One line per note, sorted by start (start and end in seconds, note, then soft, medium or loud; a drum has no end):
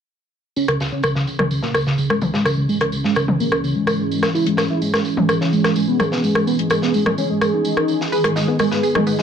0.56 8.08 E3 medium
0.56 0.66 C#4 loud
0.56 8.08 C#4 medium
0.56 9.22 G#4 medium
0.56 tambourine medium
0.68 0.77 C#3 medium
0.68 cross-stick soft
0.68 closed hi-hat soft
0.80 0.89 C#3 medium
0.80 snare medium
0.80 tambourine medium
0.92 1.01 C#4 medium
1.03 1.13 C#3 medium
1.03 cross-stick soft
1.03 tambourine medium
1.15 1.25 C#3 medium
1.15 snare soft
1.27 tambourine medium
1.39 1.48 C#3 medium
1.39 cross-stick soft
1.39 mid tom medium
1.51 1.60 C#3 medium
1.51 tambourine medium
1.62 1.72 A#3 medium
1.62 snare soft
1.74 1.84 C#3 medium
1.74 cross-stick soft
1.74 tambourine medium
1.86 1.96 C#3 medium
1.86 snare soft
1.98 2.07 C#3 medium
1.98 tambourine medium
2.10 2.19 G#3 medium
2.10 cross-stick soft
2.21 2.31 C#3 medium
2.21 mid tom medium
2.21 tambourine medium
2.34 2.43 G#3 medium
2.34 snare medium
2.45 2.55 C#3 medium
2.45 cross-stick soft
2.45 tambourine medium
2.57 2.66 C#3 medium
2.69 2.78 G#3 medium
2.69 tambourine medium
2.81 2.90 C#3 medium
2.81 cross-stick soft
2.81 closed hi-hat soft
2.92 3.02 C#3 medium
2.92 tambourine medium
3.04 3.14 G#3 medium
3.04 snare soft
3.15 3.26 C#3 medium
3.15 cross-stick soft
3.15 tambourine medium
3.28 3.37 C#3 medium
3.28 mid tom medium
3.40 3.49 A#3 medium
3.40 tambourine medium
3.52 3.61 C#3 medium
3.52 cross-stick soft
3.63 3.73 C#3 medium
3.63 tambourine medium
3.75 4.25 G#3 medium
3.87 cross-stick soft
3.87 tambourine medium
4.11 tambourine medium
4.23 cross-stick soft
4.23 snare soft
4.34 4.44 E4 medium
4.34 tambourine medium
4.46 4.55 G#3 medium
4.46 closed hi-hat soft
4.57 4.67 G#3 medium
4.57 cross-stick soft
4.57 snare medium
4.57 tambourine medium
4.70 4.79 E4 medium
4.82 4.91 G#3 medium
4.82 tambourine medium
4.94 5.03 G#3 medium
4.94 cross-stick soft
4.94 snare soft
5.05 tambourine medium
5.17 5.26 G#3 medium
5.17 mid tom medium
5.29 5.38 G#3 medium
5.29 cross-stick soft
5.29 tambourine medium
5.41 5.50 C#4 medium
5.41 snare soft
5.53 5.62 G#3 medium
5.53 tambourine medium
5.64 cross-stick soft
5.64 snare soft
5.76 5.86 G#3 medium
5.76 tambourine medium
5.88 5.97 B3 medium
5.99 6.09 G#3 medium
5.99 cross-stick soft
5.99 mid tom medium
5.99 tambourine medium
6.12 6.21 B3 medium
6.12 snare medium
6.24 6.33 G#3 medium
6.24 tambourine medium
6.35 6.44 G#3 medium
6.35 cross-stick soft
6.47 6.56 B3 loud
6.47 tambourine medium
6.59 6.68 G#3 medium
6.59 closed hi-hat soft
6.70 6.80 G#3 medium
6.70 cross-stick medium
6.70 tambourine medium
6.82 6.92 B3 medium
6.82 snare soft
6.94 7.04 G#3 medium
6.94 tambourine medium
7.06 cross-stick medium
7.06 mid tom medium
7.18 7.27 C#4 loud
7.18 tambourine medium
7.30 7.39 G#3 medium
7.41 7.51 G#3 medium
7.41 cross-stick soft
7.41 tambourine medium
7.54 8.03 D#4 loud
7.65 tambourine medium
7.77 cross-stick medium
7.88 tambourine medium
8.01 snare medium
8.12 9.22 D#3 medium
8.12 9.22 B3 medium
8.12 8.22 G#4 loud
8.12 8.20 B4 medium
8.12 tambourine medium
8.24 8.33 G#3 medium
8.24 8.29 G#4 medium
8.24 cross-stick medium
8.24 closed hi-hat soft
8.36 8.45 G#3 medium
8.36 8.41 D#4 medium
8.36 snare soft
8.36 tambourine medium
8.48 8.52 B3 medium
8.48 8.57 G#4 medium
8.59 8.69 G#3 medium
8.59 8.67 G#3 medium
8.59 cross-stick medium
8.59 tambourine medium
8.71 8.81 G#3 medium
8.71 8.83 B4 medium
8.71 snare soft
8.83 8.95 G#4 medium
8.83 tambourine medium
8.95 9.04 G#3 medium
8.95 9.00 D#4 medium
8.95 cross-stick medium
8.95 mid tom medium
9.07 9.16 G#3 medium
9.07 9.14 B3 medium
9.07 tambourine medium
9.19 9.22 G#3 medium
9.19 9.22 D#4 medium
9.19 snare soft